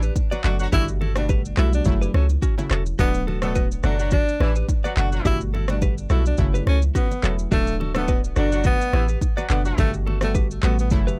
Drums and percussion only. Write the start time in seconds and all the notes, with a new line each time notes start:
0.02 shaker
0.16 kick, high bongo, shaker
0.32 low bongo, shaker
0.44 clap, shaker
0.59 shaker
0.72 kick, low conga, shaker
0.88 shaker
1.02 high bongo, low bongo, low conga
1.16 cross-stick, low bongo, shaker
1.29 kick, high bongo, shaker
1.45 shaker
1.57 cross-stick, clap, shaker
1.73 shaker
1.85 kick, low conga, shaker
2.02 shaker
2.14 cross-stick, low bongo
2.29 high bongo, shaker
2.42 kick, high bongo, shaker
2.59 low bongo, shaker
2.71 cross-stick, clap, shaker
2.86 shaker
2.99 kick, low conga, shaker
3.14 shaker
3.28 high bongo, low bongo, low conga
3.42 cross-stick, low bongo, shaker
3.55 kick, high bongo, shaker
3.72 shaker
3.83 cross-stick, shaker
3.99 shaker
4.11 kick, low conga, shaker
4.29 shaker
4.40 cross-stick, low bongo
4.56 shaker
4.68 kick, high bongo, shaker
4.85 low bongo, shaker
4.97 clap, shaker
5.12 shaker
5.25 kick, low conga, shaker
5.41 shaker
5.54 high bongo, low bongo, low conga
5.68 cross-stick, low bongo, shaker
5.82 kick, high bongo, shaker
5.98 shaker
6.10 cross-stick, shaker
6.26 shaker
6.37 kick, low conga, shaker
6.55 shaker
6.67 cross-stick, low bongo
6.82 shaker
6.95 kick, high bongo, shaker
7.11 low bongo, shaker
7.24 clap, shaker
7.39 shaker
7.52 kick, low conga, shaker
7.67 shaker
7.81 high bongo, low bongo, low conga
7.95 cross-stick, low bongo, shaker
8.08 kick, high bongo, shaker
8.24 shaker
8.36 cross-stick, shaker
8.52 shaker
8.64 kick, low conga, shaker
8.81 shaker
8.93 cross-stick, low bongo
9.08 shaker
9.21 kick, high bongo, shaker
9.38 low bongo, shaker
9.50 clap, shaker
9.65 shaker
9.78 kick, low conga, shaker
9.94 shaker
10.07 high bongo, low bongo, low conga
10.21 cross-stick, low bongo, shaker
10.35 kick, high bongo, shaker
10.51 shaker
10.63 cross-stick, clap, shaker
10.79 shaker
10.90 kick, low conga, shaker
11.08 shaker